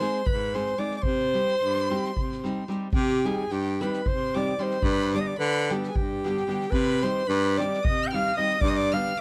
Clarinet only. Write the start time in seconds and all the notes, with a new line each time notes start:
Already playing: C5
0.26 B4
0.54 C5
0.79 D5
0.97 D5
1.02 C5
2.94 G4
3.25 G#4
3.52 G4
3.81 B4
4.08 C5
4.37 D5
4.62 C5
4.85 B4
5.16 D5
5.21 D#5
5.28 D5
5.39 B4
5.72 G4
5.91 G#4
5.95 G4
6.70 B4
7.03 C5
7.28 B4
7.57 D5
7.85 D#5
8.07 G5
8.14 F5
8.37 D#5
8.61 D5
8.70 D#5
8.77 D5
8.94 F5